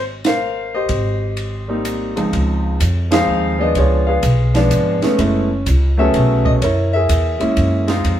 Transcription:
Already playing: G#1
0.24 A#4 C5 F5, snare, ride
0.75 G4 C5 D#5
0.89 G#1, kick, ride
1.37 ride
1.68 G3 A#3 C4 D#4
1.85 hi-hat pedal, ride
2.16 C#2 F3 G#3 C4 D#4, ride
2.33 C#2, kick, ride
2.80 F2, kick, hi-hat pedal, ride
3.11 F3 G#3 C4 D#4 G#4 C5 F5, snare, ride
3.27 D#2
3.59 F3 G#3 B3 D4 D#5
3.75 C#2 F4 G#4 C#5, kick, ride
4.07 G#4 B4 F5
4.23 B1, kick, hi-hat pedal, ride
4.54 F3 G#3 B3 D4, snare, ride
4.71 G#1, kick, hi-hat pedal, ride
5.02 G#3 A3 B3 C#4, muted upright bass stroke, snare, ride
5.18 F#1 G#3 A3 B3 E4, kick, ride
5.66 C#2, kick, hi-hat pedal, ride
5.97 F#3 A3 B3 C#4 G#4 A4 E5
6.14 B1, kick, ride
6.45 D#5, kick
6.62 F#2 E4 A#4 C#5, kick, ride
6.93 G#4 A#4 E5
7.09 E2, kick, hi-hat pedal, ride
7.39 G#3 A#3 C#4 E4, muted upright bass stroke, ride
7.57 F#2, kick, ride
7.87 G#3 C4 D#4 F4, snare, ride
8.05 F2, kick, ride

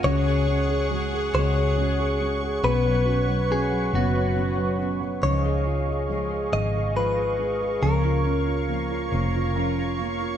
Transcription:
0.03 C#2 C#3 F#3 G#3 C#4 F#4 G#4 C#5 F#5 C#6
0.26 G#4
0.47 C#4 F#4
0.69 G#4
0.89 F#3 G#3 C#4 F#4
1.13 G#4
1.34 C#2 C#3 F#3 G#3 C#4 F#4 C#5
1.56 G#4
1.77 F#3 G#3 C#4 F#4
1.99 G#4
2.20 G#3 C#4 F#4
2.43 G#4
2.63 B1 B2 F#3 B3 C#4 F#4 B4 C#5 F#5
2.85 F#3
3.06 C#4 F#4
3.28 F#3
3.49 F#3 B3 C#4 F#4 G#4
3.71 F#3
3.93 F#1 B2 F#3 B3 C#4 F#4
4.14 F#3
4.36 F#3 B3 C#4 F#4
4.57 F#3
4.79 B3 C#4 F#4
5.01 F#3
5.22 C#2 C#3 F3 G#3 D#4 F4 G#4 C#5 D#5 F5 C#6
5.44 G#4
5.66 G#3 D#4 F4
5.88 G#4
6.09 F3 G#3 D#4 F4
6.31 G#4
6.52 G#1 C#3 F3 G#3 D#4 F4 D#5
6.74 G#4
6.95 F3 G#3 D#4 F4 B4
7.16 G#4
7.38 G#3 D#4 F4
7.61 G#4
7.82 C#2 C#3 F3 A#3 C#4 F4 A#4 C#5
8.04 F4
8.24 A#3 C#4 F4
8.47 F4
8.68 F3 A#3 C#4 F4
8.91 F4
9.12 F1 C#3 F3 A#3 C#4 F4
9.35 F4
9.54 F3 A#3 C#4 F4 A#5
9.78 F4
9.98 A#3 C#4 F4
10.21 F4

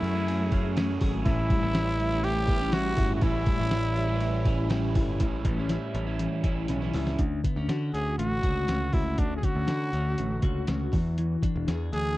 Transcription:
Already playing: F#3 A3 C#4 E4 G#4
0.02 F#2 A3, ride
0.15 F#3 A3 C#4 G#4
0.27 G#4, ride
0.51 F#3 A3 C#4 G#4, kick, ride
0.76 F#3 A3 C#4 G#4, snare, ride
1.01 G#1 G#4, kick, open hi-hat, ride
1.25 A1 A2 E3 G3 C#4 E4, kick, ride
1.50 G3, kick, ride
1.62 A1 G3 C#4 E4
1.74 C#4, snare, ride
1.99 G3, ride
2.11 A2 E3 G3 C#4 E4
2.24 E4 G4, ride
2.48 E3 G3 B3 C#4 E4, kick, ride
2.61 C#4
2.72 A2 E3 G3 C#4 E4 F#4, snare, ride
2.97 G1 E4, kick, open hi-hat, ride
3.15 F#4
3.21 A1 A2 E3 G3 C#4 E4, kick, ride
3.46 G3, kick, ride
3.59 A1 G3 C#4 E4
3.71 C#4, snare, ride
3.96 G3, ride
4.08 A2 E3 G3 C#4 E4
4.21 E4, ride
4.45 E3 G3 C#4 E4, kick, ride
4.69 A2 E3 G3 C#4 E4, snare, ride
4.95 G1 E4, kick, open hi-hat, ride
5.20 A1 A2 E3 G3 C#4 E4, kick, closed hi-hat
5.45 A1 C#4, kick, closed hi-hat
5.57 G3 C#4 E4
5.69 E4, snare, closed hi-hat
5.95 A1 C#4, closed hi-hat
6.07 G3 C#4 E4
6.19 E3, closed hi-hat
6.43 A1 E3 G3 C#4 E4, kick, closed hi-hat
6.68 B1 C#4, snare, closed hi-hat
6.81 G3 C#4 E4, snare
6.93 C#2 E4, snare, open hi-hat
7.07 snare
7.19 D2 D3, kick, closed hi-hat
7.44 B3, kick, closed hi-hat
7.56 D2 C#4
7.69 D3 F#4, snare, closed hi-hat
7.93 D2 C#4 G#4, closed hi-hat
8.18 A1 A3 F#4, closed hi-hat
8.43 C#2 F#4, kick, closed hi-hat
8.68 C#2 C#4, snare, closed hi-hat
8.93 C#2 E4 F#4, kick, open hi-hat
9.18 D2 D3 D4, kick, closed hi-hat
9.36 G#4
9.43 C#4 F#4, kick, closed hi-hat
9.55 D2
9.68 D3 F#4, snare, closed hi-hat
9.93 D2 C#4, closed hi-hat
10.18 A1 A3, closed hi-hat
10.42 C#2 F#4, kick, closed hi-hat
10.67 C#2 C#4, snare, closed hi-hat
10.93 E2 E3, kick, open hi-hat
11.18 E3, closed hi-hat
11.43 D4, kick, closed hi-hat
11.55 E1
11.68 E2 G#4, snare, closed hi-hat
11.93 D2 D4 G#4, closed hi-hat

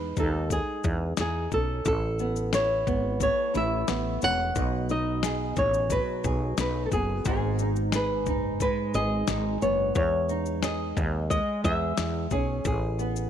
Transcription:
Already playing: E2 G#3 D#4 G#4 B4
0.17 D#2 D#4 A4, kick, shaker
0.50 G#4, kick, shaker
0.84 E2, kick, shaker
1.17 E2 D#4 G#4, snare, shaker
1.52 B1 C#4 A4, kick, shaker
1.85 A1 A4, kick, shaker
2.19 B3, shaker
2.36 shaker
2.53 E4 C#5, snare, shaker
2.87 G#1 B3, kick, shaker
3.20 A3 C#5, kick, shaker
3.54 A1 E4 E5, shaker
3.87 A1 B3, snare, shaker
4.22 E1 C#4 F#5, shaker
4.55 B1 B2, kick, shaker
4.89 D#4 D#5, shaker
5.23 G#4, snare, shaker
5.56 A1 D#4 C#5, kick, shaker
5.74 shaker
5.90 F#3 B4, kick, shaker
6.24 B1 G#4, kick, shaker
6.58 B1 D#4 B4, snare, shaker
6.86 A4
6.92 F#1 B3 G#4, kick, shaker
7.25 G#1 G#2 G#4, kick, shaker
7.59 D#4, shaker
7.76 F#4, shaker
7.92 G#4 B4, snare, shaker
8.26 F#1 D#4, kick, shaker
8.60 G#3 B4, kick, shaker
8.94 G#1 G#4 D#5, shaker
9.27 G#1 D#4, snare, shaker
9.62 F#1 B3 C#5, shaker
9.95 E2 C#5, kick, shaker
10.29 D#4, shaker
10.46 shaker
10.62 G#4 D#5, snare, shaker
10.97 D#2, kick, shaker
11.30 G#3 D#5, kick, shaker
11.64 E2 G#4 E5, kick, shaker
11.97 E2, snare, shaker
12.31 B1 C#4 G#4, kick, shaker
12.65 A1 G#4, kick, shaker
12.99 B3, shaker
13.16 shaker

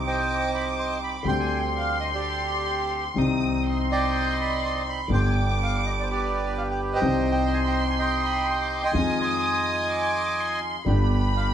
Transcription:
Already playing: C2 C3 D#3 G3 C4 D#4 G4 D6
0.07 C5 D#5 G5
0.55 B5
0.79 C6
1.04 B5
1.23 D2 D3 G3 C4 D4 G4 C6
1.28 G5 C6
1.40 G#5
1.65 G5
1.77 F5
2.00 D#5
2.14 G4 D5
3.14 C2 C3 D#3 G3 C4 D#4 D#6
3.65 C6
3.69 D#5
3.91 D5 D#5 G5
4.41 B5
4.64 C6
4.89 B5
5.08 G1 G2 D3 G3 B3 D4 G4 D6
5.13 G5 C6
5.25 G#5
5.50 G5
5.63 F5
5.86 D#5
6.00 C5 D5
6.10 G4 B4 D5
6.58 F5
6.71 G5
6.93 C5 D#5 G5
7.00 C2 C3 D#3 G3 C4 D#4 G4 C6
7.32 G5
7.54 G#5
7.67 G5
7.90 G#5
7.99 D#5 G5 C6
8.25 B5
8.51 C6
8.61 D6
8.83 D#5 G#5 C6
8.91 F2 D#3 F3 G#3 C4 D#4 F4 G#4 D#6
9.20 D#5 G#5 C6
9.91 D6
10.39 C6
10.85 G1 G2 D3 G3 B3 D4 G4 B4 B5
10.89 G4
11.37 F5

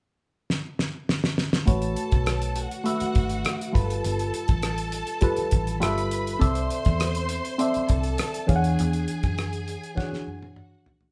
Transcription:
0.50 snare
0.79 snare
1.09 snare
1.24 snare
1.38 snare
1.53 snare
1.65 A1 A3 F#4 A4 B4 C#5 A5, kick, closed hi-hat
1.82 closed hi-hat
1.96 closed hi-hat
2.12 B1, kick, closed hi-hat
2.26 cross-stick, closed hi-hat
2.42 closed hi-hat
2.56 F#4 F#5, closed hi-hat
2.71 closed hi-hat
2.84 A3 F#4 B4 E5, closed hi-hat
3.00 muted picked electric bass stroke, closed hi-hat
3.15 G#1, kick, closed hi-hat
3.30 closed hi-hat
3.45 cross-stick, closed hi-hat
3.61 closed hi-hat
3.72 G1 G3 F4 A4 B4 A5, kick, closed hi-hat
3.90 closed hi-hat
4.04 G1, closed hi-hat
4.19 closed hi-hat
4.34 closed hi-hat
4.48 A1, kick, closed hi-hat
4.63 cross-stick, closed hi-hat
4.78 closed hi-hat
4.92 closed hi-hat
5.07 closed hi-hat
5.21 G3 F4 A4 B4, kick, closed hi-hat
5.36 muted picked electric bass stroke, closed hi-hat
5.51 A1, kick, closed hi-hat
5.67 closed hi-hat
5.80 G1 G3 F4 A4 B4 E5 B5, cross-stick, closed hi-hat
5.98 cross-stick, closed hi-hat
6.11 closed hi-hat
6.27 closed hi-hat
6.39 C2 C4 A4 C5 D5 E5 C6, kick, closed hi-hat
6.55 closed hi-hat
6.70 closed hi-hat
6.85 E2, kick, closed hi-hat
7.00 cross-stick, closed hi-hat
7.15 closed hi-hat
7.29 closed hi-hat
7.45 closed hi-hat
7.58 C4 A4 D5 E5, closed hi-hat
7.74 muted picked electric bass stroke, closed hi-hat
7.89 C2 A4 A5, kick, closed hi-hat
8.03 closed hi-hat
8.18 cross-stick, closed hi-hat
8.34 closed hi-hat
8.47 E2 E3 D4 G#4 C#5 F5 G#5, kick, closed hi-hat
8.56 F#5
8.64 closed hi-hat
8.79 E2, closed hi-hat
8.93 closed hi-hat
9.08 closed hi-hat
9.23 F#2, kick, closed hi-hat
9.38 cross-stick, closed hi-hat
9.53 closed hi-hat
9.68 closed hi-hat
9.84 closed hi-hat
9.95 E3 D4 F#4 C#5 F#5, kick, snare
10.03 G#4
10.12 muted picked electric bass stroke, snare
10.27 F#2
10.43 high tom
10.55 F#4 F#5, mid tom
10.86 floor tom
11.01 floor tom

